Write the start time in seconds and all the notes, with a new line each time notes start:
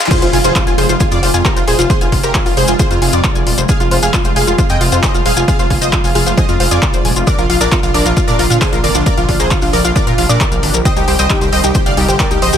Already playing: noise sweep, riser
0.00 F4
0.05 snare
0.11 C3 F3 G#3 F4 G#4 C5 C6, kick, closed hi-hat, crash, impact, maracas
0.22 F1 F4 C5 F5, closed hi-hat, maracas
0.33 F1 F4 F5 G#5, open hi-hat
0.44 F1 F4 G#4 C5 C6, closed hi-hat, maracas
0.56 F4 C5 F5, kick, clap, closed hi-hat, maracas
0.67 F1 F4 F5 G#5, closed hi-hat, maracas
0.78 F1 F4 G#4 C5 C6, open hi-hat
0.89 F1 F4 C5 F5, closed hi-hat, maracas
1.00 F4 F5 G#5, kick, closed hi-hat, maracas
1.11 F2 F4 D5 D6, closed hi-hat, maracas
1.23 F1 F4 C5 F5, open hi-hat
1.34 F2 F4 F5 G#5, closed hi-hat, maracas
1.45 F4 G4 A#4 A#5, kick, clap, closed hi-hat, maracas
1.56 F1 F4 C5 F5, closed hi-hat, maracas
1.67 D#1 G#4 C5 G#5 C6, open hi-hat
1.79 F1 F4 F5, closed hi-hat, maracas
1.90 G#4 C5 C6, kick, closed hi-hat, maracas
2.01 F1 F4 F5 G#5, closed hi-hat, maracas
2.12 F1 F4 F5, kick, open hi-hat
2.23 F1 G4 A#4 C5 A#5, closed hi-hat, maracas
2.35 F4 F5 G#5, kick, clap, closed hi-hat, maracas
2.46 F1 F4 F5, open hi-hat, maracas
2.57 F1 G#4 C5 C6, open hi-hat
2.67 F1 F4 F5 G#5, closed hi-hat, maracas
2.79 F4 G#4 C5 C6, kick, closed hi-hat, maracas
2.90 F2 F4 C5 F5, closed hi-hat, maracas
3.02 F1 F4 F5 G#5, open hi-hat
3.13 F2 F4 D5 D6, closed hi-hat, maracas
3.24 C5, kick, clap, closed hi-hat, maracas
3.35 F1 G#5, closed hi-hat, maracas
3.46 D#1 F4, open hi-hat
3.58 F1 C5, closed hi-hat, maracas
3.69 G#4 F5 G#5 F6, kick, closed hi-hat, maracas
3.80 F1 F4 F5, closed hi-hat, maracas
3.91 F1 F4 C5 F5, open hi-hat
4.02 F1 G#4 F5 G#5 F6, closed hi-hat, maracas
4.14 F4 F5, kick, clap, closed hi-hat, maracas
4.24 F1 F4 C5 F5, closed hi-hat, maracas
4.36 F1 G#4 F5 G#5 F6, open hi-hat
4.47 F1 F4 F5, closed hi-hat, maracas
4.58 F4 C5 F5, kick, closed hi-hat, maracas
4.69 F2 D#5 G5 G#5 G6, closed hi-hat, maracas
4.81 F1 F4 F5, open hi-hat
4.92 F2 F4 C5 F5, closed hi-hat, maracas
5.03 C5 D#5 G#5 D#6, kick, clap, closed hi-hat, maracas
5.14 F1 F4 F5, closed hi-hat, maracas
5.25 D#1 G#4 C5 F5 F6, open hi-hat
5.37 F1 F4 F5 G#5, closed hi-hat, maracas
5.48 F4 G#4 F5 F6, kick, closed hi-hat, maracas
5.59 F1 F4 C5 F5, closed hi-hat, maracas
5.70 F1 F4 F5 G#5, kick, open hi-hat
5.81 F1 F4 C5 D#5 D#6, closed hi-hat, maracas
5.93 F4 C5 F5, kick, clap, closed hi-hat, maracas
6.04 F1 F4 F5 G#5, open hi-hat, maracas
6.15 F1 F4 G#4 F5 F6, open hi-hat
6.26 F1 F4 C5 F5, closed hi-hat, maracas
6.37 C5 D#5 G#5 D#6, kick, closed hi-hat, maracas
6.49 F2 F4 F5, closed hi-hat, maracas
6.60 F1 F4 C5 F5, open hi-hat
6.71 F2 F4 D5 G#5 D6, closed hi-hat, maracas
6.82 F4, kick, clap, closed hi-hat, maracas
6.93 F1 C5, closed hi-hat, maracas
7.05 D#1 G#5, open hi-hat
7.16 F1 F4, closed hi-hat, maracas
7.27 A#2 D3 D4 A#4 D5 D6, kick, closed hi-hat, maracas
7.38 A#1 F4 A#4 F5, closed hi-hat, maracas
7.49 A#1 F4 F5, open hi-hat
7.60 A#1 D4 A#4 D5 D6, closed hi-hat, maracas
7.72 F4 A#4 F5, kick, clap, closed hi-hat, maracas
7.83 A#1 F4 F5, closed hi-hat, maracas
7.94 A#1 D4 A#4 D5 D6, open hi-hat
8.05 A#1 F4 A#4 F5, closed hi-hat, maracas
8.16 F4 F5, kick, closed hi-hat, maracas
8.28 A#2 D4 A#4 D5 D6, closed hi-hat, maracas
8.39 A#1 F4 A#4 F5, open hi-hat
8.50 A#2 F4 F5, closed hi-hat, maracas
8.61 D4 G#4 C5 C6, kick, clap, closed hi-hat, maracas
8.72 A#1 F4 A#4 F5, closed hi-hat, maracas
8.84 G#1 A#4 D5 F5 D6, open hi-hat
8.95 A#1 D4 F4 F5, closed hi-hat, maracas
9.06 G4 A#4 D5 D6, kick, closed hi-hat, maracas
9.17 A#1 F4 F5, closed hi-hat, maracas
9.28 A#1 D4 F4 F5, kick, open hi-hat
9.40 A#1 G#4 A#4 C5 C6, closed hi-hat, maracas
9.51 F4 F5, kick, clap, closed hi-hat, maracas
9.62 A#1 D4 F4 F5, open hi-hat, maracas
9.73 A#1 A#4 D5 D6, open hi-hat
9.84 A#1 F4 F5, closed hi-hat, maracas
9.95 D4 A#4 D5 D6, kick, closed hi-hat, maracas
10.07 A#2 F4 A#4 F5, closed hi-hat, maracas
10.18 A#1 F4 F5, open hi-hat
10.29 A#2 D4 A#4 D5 D6, closed hi-hat, maracas
10.40 A#4, kick, clap, closed hi-hat, maracas
10.52 A#1 F5, closed hi-hat, maracas
10.63 G#1 D4, open hi-hat
10.74 A#1 A#4, closed hi-hat, maracas
10.85 C3 D#3 G3 D#4 C5 D#5 G5 D#6, kick, closed hi-hat, maracas
10.96 C2 D#4 G4 G5, closed hi-hat, maracas
11.08 C2 G4 C5 G5, open hi-hat
11.19 C2 C5 D#5 G5 D#6, closed hi-hat, maracas
11.30 D#4 G4 G5, kick, clap, closed hi-hat, maracas
11.41 C2 G4 C5 G5, closed hi-hat, maracas
11.52 C2 C5 D#5 G5 D#6, open hi-hat
11.64 C2 D#4 G4 G5, closed hi-hat, maracas
11.75 G4 C5 G5, kick, closed hi-hat, maracas
11.86 G1 D5 F5 G5 F6, closed hi-hat, maracas
11.97 C2 D#4 G4 G5, open hi-hat
12.08 G1 G4 C5 G5, closed hi-hat, maracas
12.20 A#4 D5 G5 D6, kick, clap, closed hi-hat, maracas
12.31 C2 D#4 G4 G5, closed hi-hat, maracas
12.42 A#1 C5 D#5 D#6, open hi-hat
12.53 C2 G4 G5, closed hi-hat, maracas